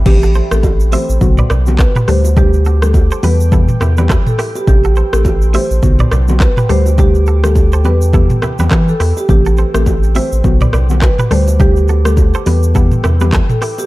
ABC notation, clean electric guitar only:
X:1
M:4/4
L:1/16
Q:"Swing 16ths" 1/4=104
K:Ador
V:1 name="Clean electric guitar"
z [FA] [Ac] z3 [ce] z2 [Bd] [Bd] z2 [GB] [DA] z | [DG] z [FA] z2 [Ac] [GB] z [EA] z [EG] [GB] [EA] z [EG] z | z [FA] [Ac] z3 [ce] z2 [Bd] [Bd] z2 [GB] [DA] z | [DG] z [FA] z2 [Ac] [GB] z [EA] z [EG] [GB] [EA] z [EG] z |
z [FA] [Ac] z3 [ce] z2 [Bd] [Bd] z2 [GB] [DA] z | [DG] z [FA] z2 [Ac] [GB] z [EA] z [EG] [GB] [EA] z [EG] z |]